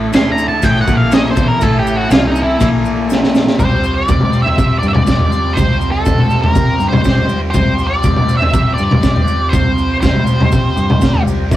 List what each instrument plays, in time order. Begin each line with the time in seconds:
Already playing: fingered electric bass A1, distorted electric guitar A2, transistor combo organ E3 A3 E4 A4 E5
0.12 fingered electric bass D2, distorted electric guitar D3, lead electric guitar C6, snare, ride bell, maracas
0.32 lead electric guitar A#5
0.38 maracas
0.48 lead electric guitar A5
0.61 fingered electric bass A1, distorted electric guitar A2, lead electric guitar G5, kick, ride bell, maracas
0.81 lead electric guitar F#5
0.86 fingered electric bass A#1, distorted electric guitar A#2, kick, maracas
0.97 lead electric guitar F5
1.12 lead electric guitar D#5, snare, ride bell, maracas
1.26 snare
1.31 lead electric guitar C5
1.36 fingered electric bass E2, distorted electric guitar E3, kick, maracas
1.48 lead electric guitar A#4
1.61 fingered electric bass A1, distorted electric guitar A2, lead electric guitar A4, kick, ride bell, maracas
1.79 lead electric guitar G4
1.87 maracas
1.97 lead electric guitar F#4
2.10 fingered electric bass C2, distorted electric guitar C3, lead electric guitar F4, snare, ride bell, maracas
2.27 lead electric guitar D#4
2.36 maracas
2.43 lead electric guitar E4
2.59 fingered electric bass A#1, distorted electric guitar A#2, kick, ride bell, maracas
2.85 maracas
3.10 snare, maracas
3.23 snare
3.35 snare, maracas
3.47 snare
3.58 fingered electric bass C2, distorted electric guitar C3 G3 C4, transistor combo organ G3 C4 F4 G4 C5, lead electric guitar C5, kick, floor tom, maracas
3.83 distorted electric guitar G3 C4, maracas
3.94 lead electric guitar D5
4.07 distorted electric guitar C3 G3 C4, kick, floor tom, maracas
4.21 mid tom
4.32 distorted electric guitar G3 C4, maracas
4.42 lead electric guitar E5, floor tom
4.57 distorted electric guitar C3 G3 C4, fingered electric bass C3, kick, maracas
4.79 fingered electric bass G2, distorted electric guitar C4, lead electric guitar D5
4.83 distorted electric guitar C3 G3, maracas
4.88 lead electric guitar E5
4.93 lead electric guitar D5, floor tom, mid tom
5.07 distorted electric guitar C3 G3 C4, kick, snare, maracas
5.19 floor tom
5.31 distorted electric guitar G3 C4, maracas
5.54 fingered electric bass C2, distorted electric guitar C3 G3 C4, lead electric guitar C5, kick, floor tom, maracas
5.81 distorted electric guitar G3 C4, maracas
5.92 lead electric guitar A4
6.05 distorted electric guitar C3 G3 C4, kick, floor tom, maracas
6.18 mid tom
6.30 distorted electric guitar G3 C4, maracas
6.42 lead electric guitar A#4, floor tom
6.55 distorted electric guitar C3 G3 C4, fingered electric bass C3, kick, maracas
6.79 fingered electric bass G2, distorted electric guitar C3 G3 C4, maracas
6.89 lead electric guitar C5, floor tom, mid tom
7.02 distorted electric guitar C3, lead electric guitar C5, kick, maracas
7.06 distorted electric guitar G3 C4, snare
7.18 floor tom
7.29 distorted electric guitar G3 C4, maracas
7.51 fingered electric bass C2, distorted electric guitar C3, lead electric guitar C5, kick, floor tom, maracas
7.56 distorted electric guitar G3 C4
7.79 distorted electric guitar G3 C4, maracas
7.87 lead electric guitar D5
8.03 distorted electric guitar C3 G3 C4, kick, floor tom, maracas
8.16 mid tom
8.29 distorted electric guitar G3 C4, maracas
8.37 lead electric guitar E5
8.42 floor tom
8.53 distorted electric guitar C3 G3 C4, fingered electric bass C3, kick, maracas
8.74 distorted electric guitar C4, lead electric guitar D5
8.78 fingered electric bass G2, distorted electric guitar C3 G3, maracas
8.91 floor tom, mid tom
9.02 distorted electric guitar C3 G3 C4, kick, snare, maracas
9.16 floor tom
9.27 distorted electric guitar G3 C4, maracas
9.49 fingered electric bass C2, distorted electric guitar C3 G3, lead electric guitar C5, floor tom
9.53 distorted electric guitar C4, kick, maracas
9.77 distorted electric guitar G3 C4, maracas
10.01 distorted electric guitar C3 G3 C4, lead electric guitar C5, kick, snare, floor tom, maracas
10.14 mid tom
10.26 distorted electric guitar G3 C4, maracas
10.41 floor tom, mid tom
10.52 distorted electric guitar C3 G3 C4, fingered electric bass C3, kick, maracas
10.77 fingered electric bass G2, distorted electric guitar C3 G3 C4, maracas
10.90 floor tom, mid tom
11.00 fingered electric bass D2, distorted electric guitar C3 G3 C4, kick, snare, maracas
11.14 floor tom
11.26 fingered electric bass C2, distorted electric guitar G3 C4, maracas
11.50 fingered electric bass C2, distorted electric guitar A2 E3 A3, transistor combo organ E3 A3 A4, kick, floor tom, maracas